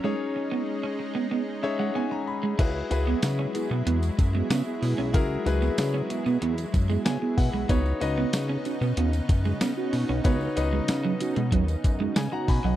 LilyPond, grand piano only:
\new Staff \with { instrumentName = "Grand piano" } { \time 4/4 \key e \major \tempo 4 = 94 << { r2 r8 e''16 fis''16 gis''16 ais''16 b''8 | r1 | r2. gis''8 fis''8 | r1 |
r2. gis''16 <fis'' ais''>16 <gis'' b''>16 <dis'' fis''>16 | } \\ { <cis' dis' gis' cis''>4. r4 <cis' dis' gis' cis''>4 r8 | <e' fis' gis' b'>8 <e' fis' gis' b'>4. r2 | <e' fis' gis' ais'>8 <e' fis' gis' b'>4. r2 | <dis' fis' b' cis''>8 <dis' fis' b' dis''>4. r2 |
<dis' fis' b' cis''>8 <dis' fis' b' dis''>4. r2 | } >> }